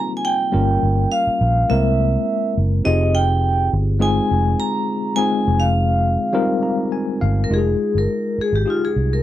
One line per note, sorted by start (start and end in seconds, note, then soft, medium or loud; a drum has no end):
0.00 0.32 G3 medium
0.00 0.53 A#3 medium
0.00 0.54 C4 medium
0.00 0.53 D#4 medium
0.00 0.33 F4 medium
0.00 0.53 G4 medium
0.00 0.53 G#4 medium
0.17 0.23 G#5 medium
0.25 1.07 G5 loud
0.52 0.76 G1 loud
0.52 1.48 G3 medium
0.52 1.49 A#3 medium
0.52 1.49 C#4 medium
0.52 1.49 F4 medium
0.52 1.49 A#4 medium
0.83 1.05 G1 loud
1.12 1.71 F5 loud
1.27 muted fingered electric bass stroke soft
1.41 1.63 A#1 medium
1.69 2.16 C2 loud
1.69 2.65 G#3 medium
1.69 2.66 A#3 medium
1.69 2.65 C4 medium
1.69 2.66 E4 medium
1.69 2.66 A#4 medium
1.69 2.52 E5 medium
2.57 2.80 F#1 medium
2.85 3.69 F1 loud
2.85 3.81 C4 medium
2.85 3.81 D#4 medium
2.85 3.82 F4 medium
2.85 3.81 G4 medium
2.85 3.82 G#4 medium
2.85 3.15 D#5 loud
3.15 3.68 G5 loud
3.73 4.19 G1 medium
3.99 4.97 G#3 medium
3.99 4.97 C4 medium
3.99 4.97 D#4 medium
3.99 4.97 F4 medium
3.99 4.97 G#4 medium
3.99 4.61 G#5 loud
4.31 4.54 F1 loud
4.60 5.19 A#5 loud
5.16 6.13 G#3 medium
5.16 6.13 C4 medium
5.16 6.14 D#4 medium
5.16 6.14 F4 medium
5.16 6.14 G#4 medium
5.16 5.62 G#5 loud
5.47 6.16 F1 loud
5.60 6.73 F5 medium
6.33 7.30 G3 medium
6.33 7.30 C4 medium
6.33 7.30 D#4 medium
6.33 7.31 F4 medium
6.33 7.31 A#4 loud
6.63 6.90 A#5 medium
6.92 7.19 G#5 medium
7.21 7.45 G1 medium
7.21 7.48 F5 medium
7.44 7.51 A#4 medium
7.50 7.73 F1 medium
7.50 8.47 G#3 medium
7.50 8.47 D#4 medium
7.50 8.47 F4 medium
7.50 7.58 G4 medium
7.50 7.97 G#4 medium
7.58 8.51 G#4 medium
7.95 8.06 G1 medium
7.95 8.37 A#4 medium
8.38 8.55 G#4 medium
8.38 muted fingered electric bass stroke soft
8.53 8.64 G#1 medium
8.53 8.69 G4 medium
8.65 9.23 D#4 medium
8.65 9.23 F4 medium
8.65 9.23 G4 medium
8.65 9.23 G#4 medium
8.70 8.82 F4 medium
8.85 9.13 G#4 medium
8.96 9.19 C2 medium
9.13 9.19 A#4 medium